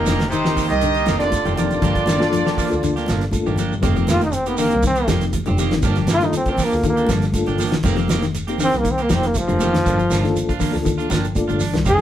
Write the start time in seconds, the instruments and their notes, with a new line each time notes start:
Already playing: baritone saxophone A#2, horn section A#3 A#4, reed electric piano C4 D#4 G4 A#4, trumpet D#4
0.06 double bass F1, clean electric guitar D3 D#3 A#3 C4 G4, snare, closed hi-hat, high conga, shekere
0.19 snare, closed hi-hat, high conga, shekere
0.28 baritone saxophone C3, horn section C4 C5, trumpet D#4, high conga
0.32 clean electric guitar D#3, closed hi-hat, shekere
0.45 clean electric guitar D#3 A#3 C4 G4, reed electric piano C4 D#4 G4 A#4, snare, shekere
0.56 clean electric guitar D#3 A#3 C4 G4, kick, snare, open hi-hat, low conga, shekere
0.68 double bass C2, baritone saxophone D#3, horn section D#4 D#5, trumpet G4, snare, closed hi-hat, shekere
0.81 clean electric guitar D3, closed hi-hat, high conga, shekere
0.94 clean electric guitar A#3 C4 G4, closed hi-hat, shekere
1.06 double bass F1, clean electric guitar D#3 A#3 C4 G4, reed electric piano C4 D#4 G4 A#4, snare, closed hi-hat, high conga, shekere
1.18 baritone saxophone D3, horn section D4 D5, trumpet F4, snare, closed hi-hat
1.22 shekere
1.30 kick, snare, closed hi-hat, high conga, shekere
1.45 double bass F1, clean electric guitar D#3 A#3 C4 G4, closed hi-hat, shekere
1.55 baritone saxophone D3, clean electric guitar D#3 F3 A#3 G4, reed electric piano C4 D#4 G4 A#4, horn section D4 D5, trumpet F4, closed hi-hat, low conga, shekere
1.70 double bass F1, closed hi-hat, shekere
1.81 double bass G1, clean electric guitar F3 A#3 D4 G4, muted clean electric guitar stroke, kick, closed hi-hat, high conga, shekere
1.95 clean electric guitar A#3 D4 G4, kick, closed hi-hat, shekere
2.06 double bass G1, clean electric guitar D#3 F3 A#3 D4 G4, snare, closed hi-hat, high conga, shekere
2.19 reed electric piano A#3 D4 F4 A4, snare, high conga, shekere
2.31 clean electric guitar F3, closed hi-hat, high conga, shekere
2.46 clean electric guitar F3 A#3 D4 G4, snare, shekere
2.57 clean electric guitar F3 A#3 D4, muted clean electric guitar stroke, kick, open hi-hat, low conga, shekere
2.68 double bass D2, reed electric piano A#3 D4 F4 A4, closed hi-hat
2.72 shekere
2.81 clean electric guitar D3, closed hi-hat, high conga, low conga, shekere
2.96 clean electric guitar A#3 D4 G4, snare, closed hi-hat, shekere
3.06 double bass G1, clean electric guitar F3 A#3 D4, muted clean electric guitar stroke, snare, closed hi-hat, high conga, shekere
3.21 snare, closed hi-hat, shekere
3.31 reed electric piano A#3 D4 F4 A4, kick, closed hi-hat, high conga, shekere
3.46 double bass G1, clean electric guitar D#3 A#3 D4 G4, shekere
3.56 clean electric guitar F3 A#3 D4 G4, closed hi-hat, high conga, low conga, shekere
3.72 double bass G1, shekere
3.81 double bass F1, clean electric guitar D#3 A#3 C4 G4, reed electric piano A#3 C4 D#4 G4, kick, closed hi-hat, high conga, shekere
3.96 clean electric guitar F3 A#3 C4 G4, closed hi-hat, shekere
4.07 double bass F1, clean electric guitar D#3 A#3 C4 G4, trombone F4, snare, closed hi-hat, high conga, shekere
4.21 clean electric guitar D#3, trombone D#4, snare, closed hi-hat, high conga, shekere
4.32 trombone C4, closed hi-hat, high conga, shekere
4.45 reed electric piano A#3 C4 D#4 G4, clean electric guitar A#3 G4, trombone B3, closed hi-hat, shekere
4.57 clean electric guitar D3 D#3 A#3 C4 G4, trombone A#3, open hi-hat, low conga, shekere
4.71 double bass C2, closed hi-hat, shekere
4.83 clean electric guitar D#3, kick, snare, closed hi-hat, high conga, low conga, shekere
4.87 trombone C4
4.95 clean electric guitar A#3 C4 G4, closed hi-hat, shekere
5.07 double bass F1, clean electric guitar D#3 F3 A#3 C4 G4, reed electric piano A#3 C4 D#4 G4, kick, snare, closed hi-hat, high conga, shekere
5.21 snare, closed hi-hat, shekere
5.33 kick, closed hi-hat, high conga, low conga, shekere
5.46 double bass F1, clean electric guitar D3 C4 G4, closed hi-hat, shekere
5.57 clean electric guitar D#3 A#3 C4 G4, reed electric piano A#3 C4 D#4 G4, closed hi-hat, low conga, shekere
5.71 double bass F1, clean electric guitar D#3, snare, closed hi-hat, shekere
5.82 double bass G1, clean electric guitar F3 A#3 D4 G4, kick, closed hi-hat, high conga, shekere
5.96 clean electric guitar F3 A#3 D4 G4, snare, closed hi-hat, shekere
6.07 double bass G1, clean electric guitar F3 A#3 D4 G4, snare, closed hi-hat, high conga, shekere
6.13 trombone F4
6.19 clean electric guitar D#3, reed electric piano A#3 D4 F4 A4, snare, closed hi-hat, high conga, shekere
6.25 trombone D#4
6.31 closed hi-hat, high conga, shekere
6.37 trombone C4
6.46 clean electric guitar A#3 D4 G4, kick, closed hi-hat, shekere
6.51 trombone C4
6.57 clean electric guitar F3 A#3 D4 G4, muted clean electric guitar stroke, kick, open hi-hat, low conga, shekere
6.64 trombone A#3
6.72 double bass D2, reed electric piano A#3 D4 F4 A4, snare, shekere
6.84 clean electric guitar D#3, kick, closed hi-hat, shekere
6.89 trombone A#3
6.97 clean electric guitar A#3 D4 G4, closed hi-hat, shekere
7.07 double bass G1, clean electric guitar F3 A#3 D4, muted clean electric guitar stroke, kick, snare, closed hi-hat, high conga, shekere
7.22 snare, closed hi-hat, shekere
7.32 reed electric piano A#3 D4 F4 A4, kick, closed hi-hat, high conga, shekere
7.46 double bass G1, clean electric guitar D3 A#3 D4 G4, closed hi-hat, shekere
7.58 clean electric guitar F3 A#3 D4 G4, open hi-hat, low conga, shekere
7.72 double bass G1, clean electric guitar D#3, snare, closed hi-hat, shekere
7.83 double bass F1, clean electric guitar D#3 A#3 C4 G4, reed electric piano A#3 C4 D#4 G4, kick, closed hi-hat, shekere
7.96 clean electric guitar F3 A#3 C4 G4, snare, closed hi-hat, shekere
8.08 double bass F1, clean electric guitar D#3 A#3 C4 G4, snare, closed hi-hat, high conga, shekere
8.21 clean electric guitar D#3, snare, closed hi-hat, high conga, shekere
8.33 closed hi-hat, high conga, shekere
8.47 reed electric piano A#3 C4 D#4 G4, clean electric guitar A#3 C4 G4, closed hi-hat, shekere
8.58 clean electric guitar D3 D#3 A#3 C4 G4, open hi-hat, low conga, shekere
8.64 trombone C4
8.73 double bass C2, snare, closed hi-hat, shekere
8.79 trombone A#3
8.84 clean electric guitar D#3, kick, closed hi-hat, high conga, shekere
8.91 trombone C4
8.98 clean electric guitar A#3 C4 G4, closed hi-hat, shekere
9.03 trombone A#3
9.09 double bass F1, clean electric guitar D#3 F3 A#3 C4 G4, reed electric piano A#3 C4 D#4 G4, kick, snare, closed hi-hat, high conga, shekere
9.14 trombone C4
9.23 trombone A#3, snare, closed hi-hat, shekere
9.34 trombone F3, kick, closed hi-hat, high conga, shekere
9.48 double bass F1, clean electric guitar D3 A#3 C4, muted clean electric guitar stroke, closed hi-hat, shekere
9.59 clean electric guitar D#3 A#3 C4 G4, reed electric piano A#3 C4 D#4 G4, closed hi-hat, high conga, low conga, shekere
9.73 double bass F1, clean electric guitar D#3, snare, closed hi-hat, shekere
9.85 double bass G1, clean electric guitar A#3 D4, muted clean electric guitar stroke, kick, closed hi-hat, shekere
9.98 clean electric guitar F3 F4, closed hi-hat, shekere
10.10 double bass G1, clean electric guitar A#3 D4 F4, snare, closed hi-hat, high conga, shekere
10.23 clean electric guitar D#3, reed electric piano A#3 D4 F4 A4, snare, closed hi-hat, high conga, shekere
10.36 closed hi-hat, high conga, shekere
10.49 clean electric guitar D4 F4, kick, closed hi-hat, shekere
10.59 clean electric guitar D3 A#3 D4 F4, kick, open hi-hat, low conga, shekere
10.71 double bass D2, reed electric piano A#3 D4 F4 A4, shekere
10.76 snare
10.85 clean electric guitar D#3, kick, closed hi-hat, high conga, shekere
10.98 clean electric guitar D4 F4, closed hi-hat, shekere
11.10 double bass G1, clean electric guitar F3 A#3 D4 F4, reed electric piano G5, kick, snare, closed hi-hat, high conga, shekere
11.24 closed hi-hat, shekere
11.35 reed electric piano A#3 D4 F4 A4 D5, kick, closed hi-hat, high conga, shekere
11.48 double bass G1, clean electric guitar D3 D4 F4, closed hi-hat, high conga, shekere
11.60 clean electric guitar D4, open hi-hat, low conga, shekere
11.74 double bass C2, clean electric guitar D#3, snare, closed hi-hat, shekere
11.85 double bass F1, clean electric guitar D#3 A#3 C4 G4, reed electric piano A#3 C4 D#4 G4, trombone G#4, kick, closed hi-hat, high conga, shekere